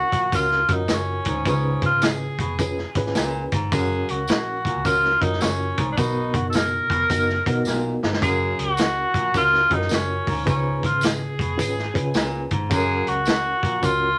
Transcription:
Already playing: F#4
0.12 A#1 A#2, kick, closed hi-hat
0.32 C#2 C#4 F4 F#4 A#4, kick, closed hi-hat, tambourine
0.51 snare
0.68 F#2 C#4 F4 F#4 A#4, kick, closed hi-hat
0.73 D#4
0.88 F#1, snare, closed hi-hat, tambourine
0.93 C#4
1.25 D2 G#2, kick, closed hi-hat
1.45 C#2 G#2 C#3 C#4 F4 G#4 B4, kick, closed hi-hat, tambourine
1.82 G#1, kick, closed hi-hat
1.86 F4
2.02 G#4, snare, closed hi-hat, tambourine
2.39 F1 B2, kick, closed hi-hat
2.59 C#4 F4 G#4 B4, kick, closed hi-hat, tambourine
2.78 snare
2.95 G#1 C#4 F4 G#4 B4, kick, closed hi-hat
3.06 snare
3.15 C#2 A#2, snare, closed hi-hat, tambourine
3.52 G1 G#2, kick, closed hi-hat
3.72 F#1 F#2 C#4 F#4 G#4 A#4 F5, kick, closed hi-hat, tambourine
4.08 C#2 F#4, closed hi-hat
4.28 A#1, snare, closed hi-hat, tambourine
4.65 A#2, kick, closed hi-hat
4.75 C#2
4.85 C#2 C#4 F4 F#4 A#4, kick, closed hi-hat, tambourine
5.05 snare
5.21 F#2 C#4 D#4 F4 F#4 A#4, kick, closed hi-hat
5.33 snare
5.41 F#1 C#4, snare, closed hi-hat, tambourine
5.77 C2 G#2, kick, closed hi-hat
5.92 D4
5.97 B1 B2 B3 D#4 F#4 A#4, kick, closed hi-hat, tambourine
6.34 F#1 F#4, kick, closed hi-hat
6.50 A4, closed hi-hat, tambourine
6.55 A#4, snare
6.90 F1 B2, kick, closed hi-hat
7.09 F#1 B3 D#4 F#4 A#4, kick, closed hi-hat, tambourine
7.29 snare
7.46 B2 B3 D#4 F#4 A#4, kick, closed hi-hat
7.65 B1 A#2, snare, tambourine
8.03 G1 G#2, snare
8.13 snare
8.21 F#1 F#2 C#4 F#4 G#4 A#4 F5, kick, closed hi-hat, tambourine
8.59 C#2 F#4, closed hi-hat
8.77 snare, closed hi-hat, tambourine
9.14 A#1 A#2, kick, closed hi-hat
9.34 C#2 C#4 F4 F#4 A#4, kick, closed hi-hat, tambourine
9.53 snare
9.70 F#2 C#4 F4 F#4 G#4, kick, closed hi-hat
9.74 D#4
9.78 A#4, snare
9.89 F#1, snare, closed hi-hat, tambourine
9.94 C#4
10.27 D2 G#2, kick, open hi-hat
10.45 C#2 G#2 C#3 C#4 F4 G#4 B4, kick, closed hi-hat, tambourine
10.50 C#4
10.83 G#1 F4, kick, closed hi-hat
11.01 snare, closed hi-hat, tambourine
11.05 G#4
11.39 F1 B2, kick, closed hi-hat
11.57 G#1 C#4 F4 G#4 B4, kick, closed hi-hat, tambourine
11.78 snare
11.94 C#3 C#4 F4 G#4 B4, kick, closed hi-hat
12.14 C#2 A#2, snare, closed hi-hat, tambourine
12.51 G1 G#2, kick, closed hi-hat
12.70 F#1 F#2 C#4 F#4 G#4 A4 F5, kick, closed hi-hat, tambourine
12.77 A#4
13.07 C#2 F#4, closed hi-hat
13.25 snare, closed hi-hat, tambourine
13.63 A#1 A#2, kick, closed hi-hat
13.82 C#2 C#4 F4 F#4 A#4, kick, closed hi-hat, tambourine

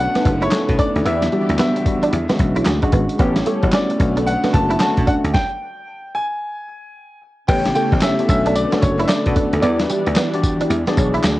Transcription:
Already playing: D3 A3 B3 C#4 D4 F#4
0.00 F#5
0.15 A3 B3 C#4 D4 D#4 A4 B4, muted slap bass stroke, snare, closed hi-hat
0.23 F#1 E4, muted clean electric guitar stroke, kick, closed hi-hat
0.42 E4 C#5, closed hi-hat
0.51 A3 C#4 D4 A4, snare, clap, closed hi-hat
0.69 B2, kick, closed hi-hat
0.79 D4 D5, kick, closed hi-hat
0.95 D2, closed hi-hat
1.05 E2 D3 E3 B3 E4 G4 D5 E5, closed hi-hat
1.22 snare, closed hi-hat
1.32 G3 B3 D4 E4 F#4 G4 D5, closed hi-hat
1.49 D2, muted clean electric guitar stroke, closed hi-hat
1.59 G3 B3 D4 F#4 E5, snare, clap, closed hi-hat
1.76 muted clean electric guitar stroke, closed hi-hat
1.86 G3 B3 D4 F#4, kick, closed hi-hat
2.03 D4 E4 G4 D5, closed hi-hat
2.13 E2 G#3, closed hi-hat
2.29 G#3 B3 C#4 D4 F#4, muted slap bass stroke, snare, closed hi-hat
2.39 B1, muted clean electric guitar stroke, kick, closed hi-hat
2.56 D4 E4 F#4 G#4 C#5, closed hi-hat
2.65 D2, muted clean electric guitar stroke, snare, clap, closed hi-hat
2.82 G#3 C#4 D4 F#4, kick, closed hi-hat
2.92 G#1 B3, kick, closed hi-hat
3.10 closed hi-hat
3.19 A1 G3 A3 B3 C#4 E4 G4 A4 C#5, kick, closed hi-hat
3.36 snare, closed hi-hat
3.46 A3 G4 A4 C#5, closed hi-hat
3.63 A1 B3 C#4 E4 F#4, muted clean electric guitar stroke, kick, closed hi-hat
3.73 C#4 D5, snare, clap, closed hi-hat
3.90 muted clean electric guitar stroke, closed hi-hat
4.00 B1 D3 A3 B3 C#4 D4 F#4, kick, closed hi-hat
4.17 D4 A4 B4 D5, closed hi-hat
4.27 F#5, closed hi-hat
4.44 A3 B3 C#4 D4 F#4 A4 B4 D5, muted slap bass stroke, snare, closed hi-hat
4.53 F#1 A5, muted clean electric guitar stroke, kick, closed hi-hat
4.70 E4, closed hi-hat
4.80 A3 C#4 D4 F#4 A5, snare, clap, closed hi-hat
4.97 B2, kick, closed hi-hat
5.07 D4 F#5, kick, closed hi-hat
5.24 D2, closed hi-hat
5.34 G5, kick, snare
6.15 G#5
7.48 A1 C#3 G3 A3 B3 G4 A4 C#5 G5, kick, closed hi-hat, crash, tambourine
7.65 B3 C#4 E4 G4, snare, closed hi-hat
7.75 A3 G4 A4 C#5 G5, closed hi-hat, tambourine
7.92 A1, muted clean electric guitar stroke, kick, closed hi-hat
8.01 C#4 G4 A4 C#5 E5, snare, clap, closed hi-hat, tambourine
8.19 B3 C#4 E4 G4, muted clean electric guitar stroke, closed hi-hat
8.29 B1 D3 B3 C#4 D4 F#4 A4 E5, kick, closed hi-hat, tambourine
8.46 D4 A4 B4 D5, closed hi-hat
8.55 A4 B4 D5, closed hi-hat, tambourine
8.72 B3 C#4 D4 F#4 A4, muted slap bass stroke, snare, closed hi-hat
8.82 F#1 C#5, muted clean electric guitar stroke, kick, closed hi-hat, tambourine
8.99 E4 A4 B4 D5, closed hi-hat
9.04 E5
9.08 D5, snare, clap, closed hi-hat, tambourine
9.26 B2 B3 D4 F#4 A4 B4 D5, kick, closed hi-hat
9.36 D4, kick, closed hi-hat
9.53 D2 A4 B4 D5, closed hi-hat
9.62 E2 E3 G3 B3 D4 E4 G4 D5, closed hi-hat, tambourine
9.80 D4 F#4 G4 B4, snare, closed hi-hat
9.90 G3 E4 G4 D5, closed hi-hat, tambourine
10.07 D2, muted clean electric guitar stroke, closed hi-hat
10.16 B3 E4 G4 D5, snare, clap, closed hi-hat, tambourine
10.33 D4 F#4 G4 D5, muted clean electric guitar stroke, closed hi-hat
10.43 kick, closed hi-hat, tambourine
10.60 D4 E4 G4 D5, closed hi-hat
10.70 E2 G#3 D4, closed hi-hat, tambourine
10.87 B3 D4 F#4 G#4 D5, muted slap bass stroke, snare, closed hi-hat
10.97 B1 D4 F#4 G#4 C#5, muted clean electric guitar stroke, kick, closed hi-hat, tambourine
11.14 E4, closed hi-hat
11.23 D2, muted clean electric guitar stroke, snare, clap, closed hi-hat, tambourine

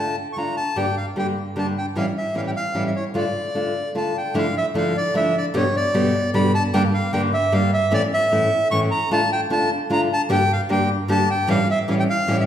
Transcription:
Already playing: D3 A3 D4 F4 A5
0.33 D3 A3 C#6
0.37 D4 F4 A#5
0.57 A5
0.76 G2 D3 G3 A#3 D4 G4 G5
0.97 F5
1.16 G2 D3 G3 A#3 D4 G4 G5
1.56 G2 D3 G3 A#3 D4 G4 A5
1.78 G5
1.95 A2 E3 G3 C#4 E4 F5
2.18 E5
2.34 A2 E3 G3 C#4 E4 F5
2.47 G5
2.56 F5
2.74 A2 E3 G3 C#4 E4
2.86 E5
2.96 C#5
3.14 D3 A3 D4 F4 D5
3.54 D3 A3 D4 F4
3.95 D3 A3 D4 F4 A5
4.17 G5
4.34 D3 F3 A3 D4 E4 F5
4.57 E5
4.74 D3 F3 A3 D4 E4 F5
4.97 D5
5.14 D3 F3 A3 D4 E4 E5
5.37 D5
5.54 G2 B2 D3 G3 B3 G4 C#5
5.76 D5
5.94 G2 B2 D3 G3 B3 G4
6.34 G2 B2 D3 G3 B3 G4 B5
6.55 A5
6.74 G2 D3 G3 A#3 D4 G4 G5
6.94 F5
7.13 G2 D3 G3 A#3 D4 G4 G5
7.33 E5
7.52 G2 D3 G3 A#3 D4 G4 F5
7.74 E5
7.91 A2 E3 A3 C#4 E4 D5
8.13 E5
8.32 A2 E3 A3 C#4 E4
8.71 A2 E3 A3 C#4 E4 C#6
8.91 A#5
9.11 D3 A3 D4 F4 A5
9.32 G5
9.50 D3 A3 D4 F4 A5
9.90 D3 A3 D4 F4 A#5
10.13 A5
10.29 G2 D3 G3 A#3 D4 G4 G5
10.53 F5
10.69 G2 D3 G3 A#3 D4 G4 G5
11.08 G2 D3 G3 A#3 D4 G4 A5
11.31 G5
11.47 A2 E3 G3 C#4 E4 F5
11.71 E5
11.88 A2 E3 G3 C#4 E4 F5
12.00 G5
12.10 F5
12.28 A2 E3 G3 C#4 E4
12.39 E5

